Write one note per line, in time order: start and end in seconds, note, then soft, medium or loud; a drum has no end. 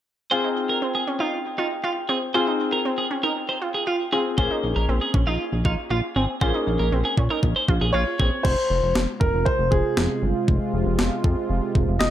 0.31 2.31 C4 medium
0.31 0.42 F4 medium
0.31 2.31 F4 medium
0.31 2.31 G#4 medium
0.31 0.48 C5 loud
0.44 0.65 D#4 medium
0.69 0.78 A#4 medium
0.82 1.03 C4 medium
0.95 1.03 G#4 medium
1.07 1.18 C#4 medium
1.20 1.41 D#4 medium
1.20 1.37 F4 medium
1.58 1.67 D#4 medium
1.58 1.79 F4 medium
1.84 1.92 F4 medium
1.84 2.05 F4 medium
2.09 2.30 C4 medium
2.09 2.18 G#4 medium
2.34 4.09 C4 medium
2.34 4.09 F4 medium
2.34 2.45 F4 medium
2.34 4.09 G#4 medium
2.34 2.52 C5 medium
2.47 2.68 D#4 medium
2.73 2.81 A#4 medium
2.85 3.06 C4 medium
2.98 3.07 G#4 medium
3.11 3.21 C#4 medium
3.23 3.44 D#4 medium
3.23 3.32 A#4 medium
3.49 3.58 C5 medium
3.62 3.82 F4 medium
3.74 3.83 G#4 medium
3.87 4.08 F4 medium
3.87 3.96 F4 medium
4.12 4.33 C4 medium
4.12 4.38 C4 medium
4.12 4.38 F4 soft
4.12 4.21 G#4 medium
4.12 4.36 G#4 medium
4.38 4.49 A#1 loud
4.38 6.37 A#3 medium
4.38 6.37 C#4 medium
4.38 4.48 F4 medium
4.38 6.37 G#4 medium
4.38 4.55 C5 loud
4.38 kick loud
4.51 4.71 D#4 medium
4.63 4.75 A#1 loud
4.76 4.87 A#1 medium
4.76 4.85 A#4 medium
4.89 5.00 A#1 loud
4.89 5.10 C4 medium
5.01 5.10 G#4 medium
5.14 5.25 A#1 loud
5.14 5.25 C#4 medium
5.14 kick loud
5.27 5.38 A#1 loud
5.27 5.48 D#4 medium
5.27 5.44 F4 medium
5.52 5.64 A#1 loud
5.65 5.76 A#1 medium
5.65 5.74 D#4 medium
5.65 5.86 F4 medium
5.65 kick medium
5.90 6.02 A#1 loud
5.90 6.11 F4 medium
5.90 5.99 F4 medium
6.16 6.27 G#1 medium
6.16 6.37 C4 medium
6.16 6.25 G#4 medium
6.41 6.53 A#1 loud
6.41 8.41 A#3 medium
6.41 8.41 C#4 medium
6.41 6.52 F4 medium
6.41 8.41 G#4 medium
6.41 6.59 C5 medium
6.41 kick loud
6.54 6.75 D#4 medium
6.67 6.78 A#1 loud
6.79 6.91 A#1 medium
6.79 6.88 A#4 medium
6.92 7.03 A#1 loud
6.92 7.13 C4 medium
7.05 7.14 G#4 medium
7.17 7.29 A#2 medium
7.17 7.28 C#4 medium
7.17 kick loud
7.30 7.51 D#4 medium
7.30 7.39 A#4 medium
7.43 7.54 A#1 loud
7.43 kick medium
7.56 7.65 C5 medium
7.68 7.80 A#1 medium
7.68 7.89 F4 medium
7.68 kick medium
7.81 7.92 A#1 medium
7.81 7.90 G#4 medium
7.93 8.05 A#1 loud
7.93 8.15 F4 medium
7.93 8.03 F4 medium
7.93 8.46 C#5 loud
8.19 8.31 A#1 medium
8.19 8.40 C4 medium
8.19 8.28 G#4 medium
8.19 kick medium
8.43 8.56 F1 loud
8.43 12.10 C3 medium
8.43 12.10 G#3 medium
8.43 12.10 F4 medium
8.43 8.91 C5 medium
8.43 kick loud
8.43 crash medium
8.70 8.81 F1 loud
8.83 8.94 F1 medium
8.95 9.07 F1 loud
8.95 snare loud
9.20 9.32 F1 loud
9.20 9.47 A#4 medium
9.20 kick loud
9.34 9.45 F1 loud
9.45 9.72 C5 loud
9.45 kick medium
9.59 9.70 F1 medium
9.71 9.83 F1 loud
9.71 10.19 G#4 medium
9.71 kick medium
9.97 10.09 F1 loud
9.97 snare loud
10.23 10.34 G1 medium
10.48 10.59 F1 loud
10.48 kick loud
10.74 10.85 F1 loud
10.86 10.97 F1 loud
10.99 11.10 F1 medium
10.99 snare loud
11.24 11.35 F2 loud
11.24 kick loud
11.50 11.61 F1 loud
11.75 11.86 F1 medium
11.75 kick medium
11.88 11.99 F1 medium
11.99 12.10 F1 loud
11.99 12.10 D#5 loud
11.99 snare loud